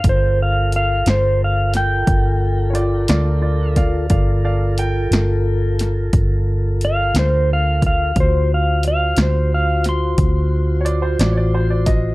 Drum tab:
HH |x-xx-xx-xx-x|x-xx-xx-xx-x|x-xx-xx-xx-x|
SD |---o-o---o-o|---o-o---o--|---o-o---o-o|
BD |o-----o----o|o-----o----o|o-----o----o|